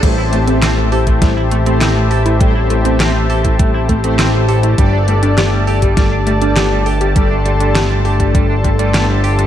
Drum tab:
CC |x---------------|----------------|----------------|----------------|
HH |x-xxx-oxx-xxx-ox|x-xxx-oxx-xxx-ox|x-xxx-oxx-xxx-ox|x-xxx-oxx-xxx-ox|
CP |----x-------x---|----x-------x---|----x-------x---|----x-------x---|
SD |----o---o---o---|----o-------o---|----o---o---o---|----o-------o---|
BD |o------oo-------|o------oo-o-----|o------oo-------|o------oo-o-----|